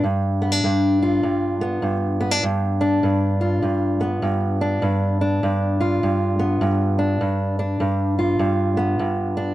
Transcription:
steel-string acoustic guitar
0.04 G2
0.42 B3
0.52 D4
0.64 G2
1.02 F4
1.23 G2
1.61 B3
1.82 G2
2.20 B3
2.31 D4
2.43 G2
2.81 D4
3.03 G2
3.41 F4
3.62 G2
4.01 B3
4.22 G2
4.61 D4
4.82 G2
5.21 D4
5.43 G2
5.80 F4
6.03 G2
6.39 B3
6.61 G2
6.99 D4
7.21 G2
7.59 D4
7.80 G2
8.19 F4
8.39 G2
8.77 B3
8.99 G2
9.37 D4

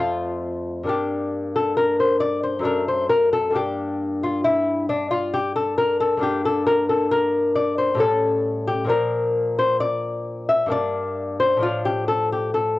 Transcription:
lute
Already playing: F2 A3 F4
0.83 G2 A#3 D4
0.89 G4
1.56 A4
1.77 A#4
2.00 C5
2.20 D5
2.43 C5
2.59 F#2 A3 D4
2.65 A#4
2.88 C5
3.10 A#4
3.33 A4
3.51 G2 A#3 D4
3.56 G4
4.23 F4
4.44 E4
4.89 D4
5.11 F4
5.34 G4
5.56 A4
5.78 A#4
6.00 A4
6.17 G2 A#3 D4
6.23 G4
6.45 A4
6.66 A#4
6.89 A4
7.11 A#4
7.55 D5
7.78 C5
7.94 A2 G3 C#4
8.00 A4
8.68 G4
8.84 A#2 F3 D4
8.90 A#4
9.59 C5
9.80 D5
10.49 E5
10.66 G2 A#3 D4
10.72 D5
11.40 C5
11.57 A2 F3
11.61 D4 F4
11.85 G4
12.08 A4
12.32 G4
12.54 A4

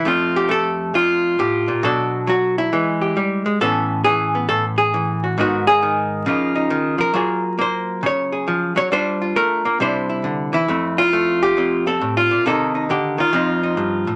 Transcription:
hollow-body jazz guitar
0.05 F2 A3 C4 F4
0.36 G4
0.49 A3 A4
0.94 F2 F4
1.39 A2 G4
1.68 A#2
1.83 B2 F#3 D4 F#4 A4
2.27 F#3 F#4
2.58 E4
2.73 E3 G#3
3.02 G4
3.17 G3
3.46 G#3
3.61 A2 E3 B3 C#4 A4
4.04 E3 G#4
4.35 B3
4.49 A2 A4
4.78 G#4
4.94 E3
5.24 F#4
5.38 G#2 D#3 B3 D#4 F#4
5.67 G#4
5.83 D#3
6.26 C#3 F3 A#3 D#4 F4
6.55 D#4
6.70 D#3
6.98 F3 A#4
7.14 F#3 A#3 F4 G#4
7.58 A#3 C5
8.03 C#3 C#5
8.32 G#4
8.48 F3
8.76 F#3 C#5
8.92 G3 D4 F4 C5
9.22 F4
9.36 A3 A#4
9.65 A#3
9.80 C3 G3 D4 E4 C5
10.10 E4
10.24 D3
10.53 E3 E4
10.68 F2 A3 C4
10.98 F4
11.13 A3
11.43 G4
11.57 F2 C4
11.87 C4 A4
12.01 A2
12.17 F4
12.31 A#2
12.46 C3 D#3 A#3 D#4 A4
12.75 D#4
12.90 D3 G4
13.18 D#3 F4
13.33 F2 F3 C4 D#4
13.63 D#4
13.77 G2
14.07 A2

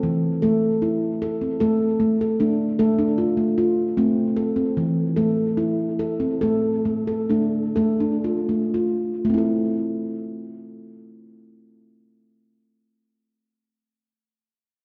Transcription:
handpan
Already playing: C4
0.03 E3
0.42 A3 A4
0.82 E4
1.22 A4
1.42 C4
1.60 A3 A4
2.00 A3
2.21 A4
2.40 A3 D4
2.79 A3 A4
2.99 D4
3.18 F4
3.37 A3
3.58 F4
3.97 A3 C4
4.36 A4
4.56 C4
4.77 E3
5.16 A3 A4
5.57 E4
5.99 A4
6.20 C4
6.41 A3 A4
6.85 A3
7.07 A4
7.30 A3 D4
7.76 A3 A4
8.00 D4
8.24 F4
8.49 A3
8.74 F4
9.25 A3
9.30 C4
9.34 E4 A4

